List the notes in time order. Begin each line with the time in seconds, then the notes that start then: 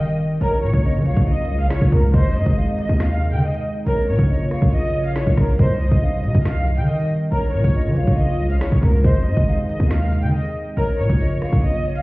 Already playing: D#3 G3 C4 G4 D#5, impact
0.09 closed hi-hat
0.41 A#1 C#3 F3 A#3 F4 A#4 C#5, closed hi-hat
0.63 A#2 C#5
0.73 A#1, kick, closed hi-hat
0.84 D#5
0.95 F3
1.06 A#1 C#5 F5, closed hi-hat
1.17 A#1, kick
1.27 D#5, closed hi-hat
1.49 C#2
1.59 F5, closed hi-hat
1.65 A#1
1.70 C#5, finger snap, snare
1.81 A#1, kick
1.92 C#2 A#4, kick
2.03 closed hi-hat
2.14 G#1 C3 D#3 G#3 D#4 C5 D#5, kick, closed hi-hat
2.35 G#2 D#5
2.46 G#1, kick, closed hi-hat
2.57 F5
2.79 D#5, closed hi-hat
2.89 D#2, kick
3.00 F5, finger snap, snare, closed hi-hat
3.22 closed hi-hat
3.32 D#3 G5, closed hi-hat
3.43 D#5
3.54 closed hi-hat
3.86 A#1 C#3 F3 A#3 F4 A#4 C#5, closed hi-hat
4.08 A#2 C#5
4.19 A#1, kick, closed hi-hat
4.30 D#5
4.51 C#5 F5, cross-stick, closed hi-hat
4.62 A#1, kick
4.73 D#5, closed hi-hat
4.80 closed hi-hat
4.87 closed hi-hat
4.94 C#5
5.05 F5, closed hi-hat
5.16 C#5, finger snap, snare
5.27 A#1, kick
5.37 A#1 A#4, kick, cross-stick, open hi-hat
5.48 closed hi-hat
5.59 C2 C3 D#3 G3 D#4 C5 D#5, kick, closed hi-hat
5.80 C#2 D#5
5.91 A#1, kick, closed hi-hat
6.02 F5
6.23 C3 D#5, closed hi-hat
6.35 C2, kick
6.45 F5, finger snap, snare, closed hi-hat
6.67 closed hi-hat
6.77 D#3 G5, closed hi-hat
6.89 D#5
7.00 closed hi-hat
7.32 A#1 C#3 F3 A#3 F4 A#4 C#5, closed hi-hat
7.53 A#2 C#5
7.64 A#1, kick, closed hi-hat
7.75 D#5
7.86 F3
7.96 A#1 C#5 F5, closed hi-hat
8.07 A#1, kick
8.17 D#5, closed hi-hat
8.40 C#2
8.50 F5, closed hi-hat
8.56 A#1
8.61 C#5, finger snap, snare
8.72 A#1, kick
8.83 C#2 A#4, kick
8.93 closed hi-hat
9.04 G#1 C3 D#3 G#3 D#4 C5 D#5, kick, closed hi-hat
9.26 G#2 D#5
9.37 G#1, kick, closed hi-hat
9.48 F5
9.69 D#5, closed hi-hat
9.80 D#2, kick
9.91 F5, finger snap, snare, closed hi-hat
10.13 closed hi-hat
10.23 D#3 G5, closed hi-hat
10.34 D#5
10.45 closed hi-hat
10.77 A#1 C#3 F3 A#3 F4 A#4 C#5, closed hi-hat
10.99 A#2 C#5
11.10 A#1, kick, closed hi-hat
11.20 D#5
11.42 C#5 F5, cross-stick, closed hi-hat
11.53 A#1, kick
11.63 D#5, closed hi-hat
11.71 closed hi-hat
11.78 closed hi-hat
11.85 C#5
11.95 F5, closed hi-hat